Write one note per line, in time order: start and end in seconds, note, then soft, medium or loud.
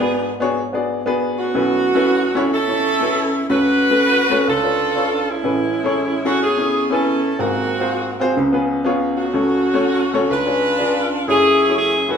0.00 1.51 G#1 medium
0.00 1.51 G#2 medium
0.00 0.27 B3 loud
0.00 0.37 B3 medium
0.00 0.37 D4 medium
0.00 0.28 D4 medium
0.00 0.28 F#4 medium
0.00 0.37 G#4 loud
0.00 0.28 G#4 medium
0.00 0.28 B4 medium
0.40 0.60 B3 medium
0.40 0.60 D4 medium
0.40 0.61 F#4 medium
0.40 0.61 G#4 medium
0.40 0.61 C#5 loud
0.73 0.99 B3 medium
0.73 0.99 D4 medium
0.73 1.00 F#4 medium
0.73 1.00 G#4 medium
0.73 1.00 D5 medium
1.06 1.46 B3 medium
1.06 1.46 D4 medium
1.06 1.46 F#4 medium
1.06 1.46 G#4 medium
1.06 1.46 B4 loud
1.39 2.49 A3 medium
1.39 2.49 C#4 medium
1.39 2.49 F#4 medium
1.54 3.46 B1 medium
1.54 3.46 B2 medium
1.54 1.88 C#4 medium
1.54 1.89 E4 medium
1.54 1.89 F#4 medium
1.54 1.89 A4 medium
1.54 1.89 B4 medium
1.95 2.22 C#4 medium
1.95 2.23 E4 medium
1.95 2.23 F#4 medium
1.95 2.23 A4 medium
1.95 2.23 B4 loud
2.35 2.55 C#4 medium
2.35 2.55 E4 medium
2.35 2.56 F#4 medium
2.35 2.56 A4 medium
2.35 2.56 C#5 loud
2.53 3.46 C#4 medium
2.53 3.47 E4 medium
2.53 3.34 A4 loud
2.68 2.94 C#4 medium
2.68 2.94 E4 medium
2.68 2.94 F#4 medium
2.68 2.95 A4 medium
2.68 2.95 C#5 medium
3.01 3.41 C#4 medium
3.01 3.41 E4 medium
3.01 3.41 F#4 medium
3.01 3.41 A4 medium
3.01 3.42 B4 medium
3.49 4.43 C#2 medium
3.49 4.43 C#3 medium
3.49 3.83 A3 medium
3.49 3.83 C#4 medium
3.49 3.84 F#4 medium
3.49 4.43 F#4 medium
3.49 3.84 A4 medium
3.49 4.43 B4 loud
3.49 3.84 C#5 medium
3.90 4.18 A3 medium
3.90 4.18 C#4 medium
3.90 4.18 F#4 medium
3.90 4.18 A4 medium
3.90 4.18 B4 medium
4.30 4.47 A3 loud
4.30 4.47 C#4 medium
4.30 4.47 F#4 medium
4.30 4.47 A4 medium
4.30 4.48 C#5 loud
4.48 5.41 C#2 medium
4.48 5.41 C#3 medium
4.48 5.41 D4 medium
4.48 5.41 F4 medium
4.48 5.28 A4 loud
4.63 4.89 D4 medium
4.63 4.89 F4 medium
4.63 4.90 A4 medium
4.63 4.90 B4 medium
4.63 4.90 C#5 medium
4.95 5.35 D4 medium
4.95 5.36 F4 medium
4.95 5.36 A4 medium
4.95 5.36 B4 medium
4.95 5.36 C#5 medium
5.30 6.22 G#3 medium
5.30 6.22 C#4 medium
5.30 6.26 E4 medium
5.43 7.35 A1 medium
5.43 7.35 A2 medium
5.43 5.78 C#4 medium
5.43 5.78 E4 medium
5.43 5.78 G#4 medium
5.43 5.78 A4 medium
5.43 5.79 B4 medium
5.84 6.12 C#4 medium
5.84 6.12 E4 medium
5.84 6.12 G#4 medium
5.84 6.13 A4 medium
5.84 6.13 C#5 medium
6.25 6.45 C#4 medium
6.25 6.45 E4 medium
6.25 6.42 F#4 medium
6.25 6.45 G#4 medium
6.25 6.45 A4 medium
6.25 6.46 C#5 medium
6.43 7.36 B3 medium
6.43 6.90 C#4 medium
6.43 6.88 G#4 medium
6.57 6.84 C#4 medium
6.57 6.84 E4 medium
6.57 6.84 G#4 medium
6.57 6.84 A4 medium
6.57 6.85 C#5 medium
6.90 7.30 C#4 medium
6.90 7.36 C#4 medium
6.90 7.30 E4 medium
6.90 7.36 E4 medium
6.90 7.31 A4 medium
6.90 7.40 A4 medium
6.90 7.31 B4 medium
6.90 7.30 G#5 medium
7.39 8.33 G#1 medium
7.39 8.32 G#2 medium
7.39 8.33 A#3 medium
7.39 7.73 C4 medium
7.39 8.33 C4 medium
7.39 7.73 F4 medium
7.39 7.73 F#4 medium
7.39 8.20 F#4 medium
7.39 7.73 G#4 medium
7.39 7.73 A#4 medium
7.80 8.07 C4 medium
7.80 8.07 F4 medium
7.80 8.08 F#4 medium
7.80 8.08 G#4 medium
7.80 8.08 C5 medium
8.20 8.36 C4 loud
8.20 8.37 F4 medium
8.20 8.37 F#4 medium
8.20 8.37 G#4 medium
8.20 8.37 C5 loud
8.37 9.30 C#2 medium
8.37 9.30 C#3 medium
8.52 8.78 B3 medium
8.52 8.79 C#4 medium
8.52 8.79 F4 medium
8.52 8.79 G#4 medium
8.52 8.79 B4 medium
8.84 9.25 B3 medium
8.84 9.25 C#4 medium
8.84 9.25 F4 loud
8.84 9.25 G#4 medium
8.84 9.25 C#5 loud
9.17 10.27 A3 medium
9.17 10.27 C#4 medium
9.17 10.27 F#4 medium
9.33 10.27 C#2 medium
9.33 10.27 C#3 medium
9.33 9.67 A3 medium
9.33 9.67 C#4 medium
9.33 9.68 F#4 medium
9.33 9.68 A4 medium
9.33 9.68 C#5 medium
9.73 10.01 A3 medium
9.73 10.01 C#4 medium
9.73 10.02 F#4 medium
9.73 10.02 A4 medium
9.73 10.02 C#5 loud
10.13 10.30 A3 medium
10.13 10.31 C#4 medium
10.13 10.31 F#4 medium
10.13 10.31 A4 medium
10.13 10.31 C#5 loud
10.31 11.24 C#2 medium
10.31 11.24 C#3 medium
10.31 11.24 D4 medium
10.31 11.25 F4 medium
10.31 11.12 B4 loud
10.46 10.72 D4 medium
10.46 10.73 F4 medium
10.46 10.73 G#4 medium
10.46 10.73 B4 medium
10.46 10.73 C#5 medium
10.78 11.19 D4 medium
10.78 11.19 F4 medium
10.78 11.19 G#4 medium
10.78 11.20 B4 medium
10.78 11.20 D5 medium
11.27 12.17 F#1 medium
11.27 12.17 F#2 medium
11.27 12.09 C#4 medium
11.27 11.62 E4 medium
11.27 12.17 E4 medium
11.27 11.62 F#4 medium
11.27 11.62 G#4 medium
11.27 11.74 G#4 loud
11.27 11.62 A4 medium
11.27 11.62 C#5 medium
11.68 11.96 E4 medium
11.68 11.96 F#4 medium
11.68 11.96 G#4 medium
11.68 11.96 A4 medium
11.68 11.97 C#5 medium
11.78 12.08 G#4 loud
12.08 12.17 A3 medium
12.08 12.17 C#4 medium
12.08 12.17 E4 medium
12.08 12.17 F#4 medium
12.08 12.17 G#4 medium
12.08 12.17 A4 medium
12.08 12.17 B4 medium